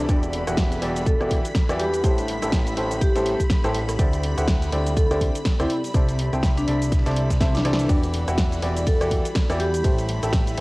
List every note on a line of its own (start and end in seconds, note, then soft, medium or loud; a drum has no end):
0.00 0.15 D4 medium
0.00 0.88 A4 medium
0.00 0.88 D5 medium
0.09 0.45 E1 loud
0.09 0.44 E3 medium
0.09 2.83 D4 medium
0.09 0.44 E4 medium
0.09 0.44 F#4 medium
0.09 0.44 G4 medium
0.09 0.44 D5 medium
0.09 7.88 B5 medium
0.09 kick loud
0.09 closed hi-hat medium
0.09 shaker medium
0.23 closed hi-hat soft
0.23 shaker soft
0.33 2.83 G3 medium
0.33 closed hi-hat medium
0.33 open hi-hat loud
0.47 0.80 E1 loud
0.47 0.80 E3 medium
0.47 0.80 E4 medium
0.47 0.80 F#4 medium
0.47 0.80 G4 medium
0.47 0.80 F#5 medium
0.47 cross-stick medium
0.47 closed hi-hat soft
0.47 shaker medium
0.57 kick loud
0.57 snare loud
0.57 closed hi-hat medium
0.57 shaker medium
0.72 snare soft
0.72 closed hi-hat soft
0.72 shaker soft
0.82 1.18 E1 loud
0.82 1.17 E3 medium
0.82 1.17 E4 medium
0.82 1.17 F#4 medium
0.82 1.17 G4 medium
0.82 1.17 D5 medium
0.82 closed hi-hat medium
0.82 open hi-hat loud
0.96 2.04 F#5 medium
0.96 closed hi-hat medium
0.96 shaker medium
1.06 1.28 A4 medium
1.06 kick loud
1.06 closed hi-hat medium
1.06 shaker medium
1.20 1.40 E1 loud
1.20 1.43 E3 loud
1.20 1.43 E4 medium
1.20 1.43 F#4 medium
1.20 1.43 G4 medium
1.20 1.43 D5 loud
1.20 cross-stick medium
1.20 closed hi-hat soft
1.20 shaker soft
1.31 kick medium
1.31 closed hi-hat medium
1.31 open hi-hat loud
1.45 closed hi-hat soft
1.45 shaker medium
1.55 kick loud
1.55 snare loud
1.55 closed hi-hat medium
1.55 shaker medium
1.69 2.02 E2 medium
1.69 1.82 E3 loud
1.69 1.82 E4 medium
1.69 1.82 F#4 medium
1.69 1.82 G4 medium
1.69 1.82 D5 loud
1.69 cross-stick medium
1.69 snare soft
1.69 closed hi-hat soft
1.69 shaker soft
1.80 2.10 G4 medium
1.80 closed hi-hat medium
1.80 open hi-hat loud
1.94 closed hi-hat medium
1.94 shaker medium
2.04 2.40 A1 loud
2.04 2.39 A3 medium
2.04 7.89 C4 medium
2.04 2.39 E4 medium
2.04 2.39 G4 medium
2.04 2.39 A4 medium
2.04 2.39 C5 medium
2.04 kick loud
2.04 closed hi-hat medium
2.04 shaker medium
2.18 snare soft
2.18 closed hi-hat soft
2.18 shaker soft
2.28 closed hi-hat medium
2.28 open hi-hat loud
2.42 2.75 A1 loud
2.42 2.75 A3 medium
2.42 2.75 E4 medium
2.42 2.75 G4 medium
2.42 2.75 A4 medium
2.42 2.75 E5 medium
2.42 cross-stick medium
2.42 closed hi-hat medium
2.42 closed hi-hat soft
2.42 shaker medium
2.52 4.68 A4 loud
2.52 kick loud
2.52 snare loud
2.52 closed hi-hat medium
2.52 shaker medium
2.59 4.57 G4 medium
2.67 closed hi-hat soft
2.67 shaker soft
2.77 3.13 A1 loud
2.77 3.12 A3 medium
2.77 3.12 E4 medium
2.77 3.12 G4 medium
2.77 3.12 A4 medium
2.77 3.12 C5 medium
2.77 closed hi-hat medium
2.77 open hi-hat loud
2.91 closed hi-hat medium
2.91 shaker medium
3.01 3.40 G4 medium
3.01 kick loud
3.01 closed hi-hat medium
3.01 shaker medium
3.16 3.35 A1 loud
3.16 3.38 A3 loud
3.16 3.38 E4 medium
3.16 3.38 G4 medium
3.16 3.38 A4 medium
3.16 3.38 C5 loud
3.16 snare medium
3.16 closed hi-hat soft
3.16 shaker soft
3.26 snare soft
3.26 closed hi-hat medium
3.26 open hi-hat loud
3.40 kick medium
3.40 snare soft
3.40 closed hi-hat medium
3.40 shaker medium
3.50 kick loud
3.50 snare loud
3.50 closed hi-hat medium
3.50 shaker medium
3.64 3.97 A1 loud
3.64 3.77 A3 loud
3.64 3.77 E4 medium
3.64 3.77 G4 medium
3.64 3.77 A4 medium
3.64 3.77 C5 loud
3.64 cross-stick medium
3.64 snare soft
3.64 closed hi-hat soft
3.64 shaker soft
3.75 snare soft
3.75 closed hi-hat medium
3.75 open hi-hat loud
3.89 cross-stick medium
3.89 snare medium
3.89 closed hi-hat medium
3.89 shaker medium
3.99 4.35 D2 loud
3.99 4.34 D3 medium
3.99 4.34 E4 medium
3.99 4.34 G4 medium
3.99 4.34 C5 medium
3.99 4.34 D5 medium
3.99 kick loud
3.99 closed hi-hat medium
3.99 shaker medium
4.13 closed hi-hat soft
4.13 shaker soft
4.23 closed hi-hat medium
4.23 open hi-hat loud
4.38 4.70 D2 loud
4.38 4.70 D3 medium
4.38 4.70 E4 medium
4.38 4.70 G4 medium
4.38 4.70 C5 medium
4.38 10.61 D5 medium
4.38 4.70 F#5 medium
4.38 cross-stick medium
4.38 closed hi-hat medium
4.38 shaker medium
4.48 kick loud
4.48 snare loud
4.48 closed hi-hat medium
4.48 shaker medium
4.58 6.59 G4 medium
4.58 snare soft
4.58 closed hi-hat soft
4.62 shaker soft
4.72 5.08 D2 loud
4.72 5.07 D3 medium
4.72 5.07 E4 medium
4.72 5.07 G4 medium
4.72 5.07 C5 medium
4.72 5.07 D5 medium
4.72 closed hi-hat medium
4.72 open hi-hat loud
4.86 closed hi-hat medium
4.86 shaker medium
4.97 5.19 A4 medium
4.97 kick loud
4.97 closed hi-hat medium
4.97 shaker medium
5.11 5.30 D2 loud
5.11 5.33 D3 loud
5.11 5.33 E4 medium
5.11 5.33 G4 medium
5.11 5.33 C5 medium
5.11 5.33 D5 loud
5.11 cross-stick medium
5.11 closed hi-hat soft
5.11 shaker soft
5.21 kick medium
5.21 closed hi-hat medium
5.21 open hi-hat loud
5.35 closed hi-hat medium
5.35 shaker medium
5.45 kick loud
5.45 snare loud
5.45 closed hi-hat medium
5.45 shaker medium
5.60 5.67 D2 loud
5.60 5.69 C3 loud
5.60 5.75 E4 medium
5.60 5.69 E4 medium
5.60 5.69 G4 medium
5.60 5.69 C5 medium
5.60 5.69 D5 loud
5.60 cross-stick medium
5.60 snare soft
5.60 closed hi-hat soft
5.60 shaker soft
5.70 closed hi-hat medium
5.70 open hi-hat loud
5.84 closed hi-hat medium
5.84 shaker medium
5.94 6.30 C2 loud
5.94 6.29 C3 medium
5.94 6.29 E4 medium
5.94 6.29 A4 medium
5.94 6.29 C5 medium
5.94 6.29 D5 medium
5.94 kick loud
5.94 closed hi-hat medium
5.94 shaker medium
6.08 snare soft
6.08 closed hi-hat soft
6.08 shaker soft
6.19 closed hi-hat medium
6.19 open hi-hat loud
6.29 6.65 C2 loud
6.29 6.65 C3 medium
6.29 6.65 E4 medium
6.29 8.68 A4 medium
6.29 6.65 A4 medium
6.29 6.65 C5 medium
6.29 6.65 G5 medium
6.29 cross-stick medium
6.29 closed hi-hat soft
6.29 closed hi-hat medium
6.29 shaker medium
6.43 kick loud
6.43 snare loud
6.43 closed hi-hat medium
6.43 shaker medium
6.57 6.78 D4 medium
6.57 closed hi-hat soft
6.57 shaker soft
6.67 7.03 C2 medium
6.67 7.03 C3 medium
6.67 7.03 E4 medium
6.67 7.03 A4 medium
6.67 7.03 C5 medium
6.67 7.03 D5 medium
6.67 closed hi-hat medium
6.67 open hi-hat loud
6.82 open hi-hat medium
6.82 shaker medium
6.92 kick loud
6.92 snare medium
6.92 closed hi-hat medium
6.92 shaker medium
6.99 snare medium
6.99 closed hi-hat medium
7.06 7.39 C2 loud
7.06 7.28 C3 loud
7.06 7.28 E4 medium
7.06 7.28 A4 medium
7.06 7.28 C5 medium
7.06 7.28 D5 loud
7.06 snare medium
7.06 closed hi-hat medium
7.06 closed hi-hat soft
7.06 shaker soft
7.11 snare medium
7.11 closed hi-hat medium
7.16 closed hi-hat medium
7.16 open hi-hat loud
7.30 kick medium
7.30 snare loud
7.30 closed hi-hat medium
7.30 shaker medium
7.40 7.63 C2 loud
7.40 7.62 C3 medium
7.40 7.62 E4 medium
7.40 7.62 A4 medium
7.40 7.62 C5 medium
7.40 7.62 E5 loud
7.40 kick loud
7.40 snare loud
7.40 snare medium
7.40 closed hi-hat medium
7.40 shaker medium
7.55 7.95 D4 medium
7.55 snare medium
7.55 closed hi-hat soft
7.55 shaker soft
7.65 7.87 C2 loud
7.65 7.87 E3 loud
7.65 7.87 E4 medium
7.65 7.87 A4 medium
7.65 7.87 C5 medium
7.65 7.87 D5 loud
7.65 snare loud
7.65 closed hi-hat medium
7.65 open hi-hat loud
7.73 snare medium
7.79 snare soft
7.79 closed hi-hat medium
7.79 shaker medium
7.89 8.25 E1 loud
7.89 8.24 E3 medium
7.89 8.24 E4 medium
7.89 10.61 E4 medium
7.89 8.24 F#4 medium
7.89 8.24 G4 medium
7.89 8.24 D5 medium
7.89 10.61 B5 medium
7.89 kick loud
7.89 closed hi-hat medium
7.89 ride medium
7.89 shaker medium
8.01 10.61 G3 medium
8.01 closed hi-hat soft
8.01 shaker soft
8.14 closed hi-hat medium
8.14 open hi-hat loud
8.28 8.60 E1 loud
8.28 8.60 E3 medium
8.28 8.60 E4 medium
8.28 8.60 F#4 medium
8.28 8.60 G4 medium
8.28 8.60 F#5 medium
8.28 cross-stick medium
8.28 closed hi-hat medium
8.28 shaker medium
8.38 kick loud
8.38 snare loud
8.38 closed hi-hat medium
8.38 ride medium
8.38 shaker medium
8.52 snare soft
8.52 closed hi-hat soft
8.52 shaker soft
8.62 8.98 E1 loud
8.62 8.98 E3 medium
8.62 8.98 E4 medium
8.62 8.98 F#4 medium
8.62 8.98 G4 medium
8.62 8.98 D5 medium
8.62 closed hi-hat medium
8.62 open hi-hat loud
8.77 9.85 F#5 medium
8.77 closed hi-hat medium
8.77 shaker medium
8.87 9.09 A4 medium
8.87 kick loud
8.87 closed hi-hat medium
8.87 ride medium
8.87 shaker medium
9.01 9.21 E1 loud
9.01 9.23 E3 loud
9.01 9.23 E4 medium
9.01 9.23 F#4 loud
9.01 9.23 G4 medium
9.01 9.23 D5 loud
9.01 cross-stick medium
9.01 closed hi-hat soft
9.01 shaker soft
9.11 kick medium
9.11 closed hi-hat medium
9.11 open hi-hat loud
9.25 closed hi-hat medium
9.25 shaker medium
9.35 kick loud
9.35 snare loud
9.35 closed hi-hat medium
9.35 ride medium
9.35 shaker medium
9.50 9.82 E2 loud
9.50 9.62 E3 loud
9.50 9.62 E4 medium
9.50 9.62 F#4 medium
9.50 9.62 G4 medium
9.50 9.62 D5 loud
9.50 cross-stick medium
9.50 snare soft
9.50 closed hi-hat soft
9.50 shaker soft
9.60 9.90 G4 medium
9.60 closed hi-hat medium
9.60 open hi-hat loud
9.74 closed hi-hat medium
9.74 shaker medium
9.84 10.20 A1 loud
9.84 10.20 A3 medium
9.84 10.20 E4 medium
9.84 10.20 G4 medium
9.84 10.20 A4 medium
9.84 10.20 C5 medium
9.84 kick loud
9.84 closed hi-hat medium
9.84 ride medium
9.84 shaker medium
9.98 snare soft
9.98 closed hi-hat soft
9.98 shaker soft
10.04 10.61 A4 medium
10.09 closed hi-hat medium
10.09 open hi-hat loud
10.23 10.56 A1 loud
10.23 10.55 A3 medium
10.23 10.55 E4 medium
10.23 10.55 G4 medium
10.23 10.55 A4 medium
10.23 10.55 E5 medium
10.23 cross-stick medium
10.23 closed hi-hat medium
10.23 closed hi-hat soft
10.23 shaker medium
10.33 kick loud
10.33 snare loud
10.33 closed hi-hat medium
10.33 ride medium
10.33 shaker medium
10.47 closed hi-hat soft
10.47 shaker soft
10.57 open hi-hat loud